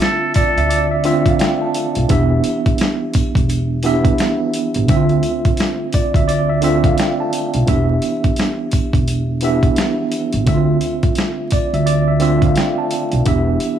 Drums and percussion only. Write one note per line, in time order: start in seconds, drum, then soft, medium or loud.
0.01 snare loud
0.01 sleigh bells medium
0.34 kick medium
0.34 closed hi-hat medium
0.34 sleigh bells medium
0.58 closed hi-hat medium
0.70 closed hi-hat loud
0.70 sleigh bells medium
1.04 closed hi-hat medium
1.04 sleigh bells medium
1.26 kick loud
1.26 closed hi-hat medium
1.39 snare loud
1.39 closed hi-hat medium
1.39 sleigh bells medium
1.74 closed hi-hat medium
1.74 sleigh bells medium
1.95 closed hi-hat medium
2.09 kick loud
2.09 closed hi-hat loud
2.09 sleigh bells soft
2.44 closed hi-hat medium
2.44 sleigh bells medium
2.66 kick loud
2.66 closed hi-hat soft
2.78 snare loud
2.78 closed hi-hat medium
2.78 sleigh bells medium
3.13 kick medium
3.13 closed hi-hat medium
3.13 sleigh bells medium
3.35 kick loud
3.35 closed hi-hat medium
3.49 closed hi-hat loud
3.49 sleigh bells medium
3.83 closed hi-hat medium
3.83 sleigh bells medium
4.05 kick loud
4.05 closed hi-hat medium
4.18 snare loud
4.18 closed hi-hat medium
4.18 sleigh bells medium
4.54 closed hi-hat medium
4.54 sleigh bells medium
4.74 closed hi-hat medium
4.88 kick loud
4.88 closed hi-hat loud
4.88 sleigh bells medium
5.09 closed hi-hat soft
5.23 closed hi-hat medium
5.23 sleigh bells medium
5.45 kick loud
5.45 closed hi-hat soft
5.57 snare loud
5.57 closed hi-hat medium
5.57 sleigh bells medium
5.93 kick medium
5.93 closed hi-hat medium
5.93 sleigh bells medium
6.14 kick loud
6.14 closed hi-hat medium
6.28 closed hi-hat loud
6.28 sleigh bells medium
6.62 closed hi-hat medium
6.62 sleigh bells medium
6.84 kick loud
6.84 closed hi-hat medium
6.98 snare loud
6.98 closed hi-hat medium
6.98 sleigh bells medium
7.33 closed hi-hat medium
7.33 sleigh bells medium
7.54 closed hi-hat medium
7.68 kick loud
7.68 closed hi-hat medium
7.68 sleigh bells soft
8.02 closed hi-hat medium
8.02 sleigh bells medium
8.24 kick loud
8.24 closed hi-hat soft
8.36 snare loud
8.36 closed hi-hat medium
8.36 sleigh bells soft
8.71 kick medium
8.71 closed hi-hat medium
8.71 sleigh bells medium
8.93 kick loud
8.93 closed hi-hat medium
9.07 closed hi-hat loud
9.07 sleigh bells soft
9.41 closed hi-hat medium
9.41 sleigh bells medium
9.63 kick loud
9.63 closed hi-hat medium
9.76 snare loud
9.76 closed hi-hat medium
9.76 sleigh bells soft
10.12 closed hi-hat medium
10.12 sleigh bells medium
10.32 closed hi-hat medium
10.47 kick loud
10.47 closed hi-hat medium
10.47 sleigh bells soft
10.81 closed hi-hat medium
10.81 sleigh bells medium
11.03 kick loud
11.03 closed hi-hat soft
11.15 snare loud
11.15 closed hi-hat medium
11.15 sleigh bells soft
11.51 kick medium
11.51 closed hi-hat medium
11.51 sleigh bells medium
11.74 closed hi-hat medium
11.87 closed hi-hat loud
11.87 sleigh bells medium
12.20 closed hi-hat medium
12.20 sleigh bells medium
12.42 kick loud
12.42 closed hi-hat medium
12.56 snare loud
12.56 closed hi-hat medium
12.56 sleigh bells soft
12.91 closed hi-hat medium
12.91 sleigh bells medium
13.12 closed hi-hat medium
13.26 kick loud
13.26 closed hi-hat loud
13.26 sleigh bells soft
13.60 closed hi-hat medium
13.60 sleigh bells medium